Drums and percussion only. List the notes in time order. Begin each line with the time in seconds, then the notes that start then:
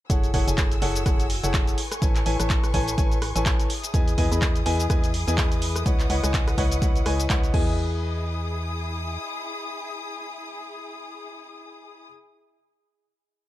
0.10 kick, closed hi-hat, shaker
0.24 closed hi-hat, shaker
0.34 kick, open hi-hat
0.48 closed hi-hat, shaker
0.58 kick, clap, closed hi-hat, shaker
0.72 closed hi-hat, shaker
0.82 open hi-hat
0.96 closed hi-hat, shaker
1.06 kick, cross-stick, closed hi-hat, shaker
1.20 closed hi-hat, shaker
1.30 open hi-hat
1.43 closed hi-hat, shaker
1.54 kick, clap, closed hi-hat, shaker
1.67 closed hi-hat, shaker
1.78 open hi-hat
1.92 cross-stick, closed hi-hat, shaker
2.02 kick, closed hi-hat, shaker
2.15 clap, closed hi-hat, shaker
2.26 open hi-hat
2.40 cross-stick, closed hi-hat, shaker
2.50 kick, clap, closed hi-hat, shaker
2.64 cross-stick, closed hi-hat, shaker
2.74 kick, open hi-hat
2.88 closed hi-hat, shaker
2.98 kick, closed hi-hat, shaker
3.12 closed hi-hat, shaker
3.22 cross-stick, open hi-hat
3.36 closed hi-hat, shaker
3.46 kick, clap, closed hi-hat, shaker
3.60 closed hi-hat, shaker
3.70 open hi-hat
3.84 closed hi-hat, shaker
3.94 kick, closed hi-hat, shaker
4.08 closed hi-hat, shaker
4.18 kick, open hi-hat
4.32 closed hi-hat, shaker
4.42 kick, clap, closed hi-hat, shaker
4.56 closed hi-hat, shaker
4.66 open hi-hat
4.80 closed hi-hat, shaker
4.90 kick, cross-stick, closed hi-hat, shaker
5.04 closed hi-hat, shaker
5.14 open hi-hat
5.28 closed hi-hat, shaker
5.38 kick, clap, closed hi-hat, shaker
5.52 closed hi-hat, shaker
5.62 open hi-hat
5.76 cross-stick, closed hi-hat, shaker
5.86 kick, closed hi-hat, shaker
6.00 clap, closed hi-hat, shaker
6.10 open hi-hat
6.24 cross-stick, closed hi-hat, shaker
6.34 kick, clap, closed hi-hat, shaker
6.48 cross-stick, closed hi-hat, shaker
6.58 kick, open hi-hat
6.72 closed hi-hat, shaker
6.82 kick, closed hi-hat, shaker
6.96 closed hi-hat, shaker
7.06 cross-stick, open hi-hat
7.20 closed hi-hat, shaker
7.30 kick, clap, closed hi-hat, shaker
7.44 closed hi-hat, shaker
7.54 kick, crash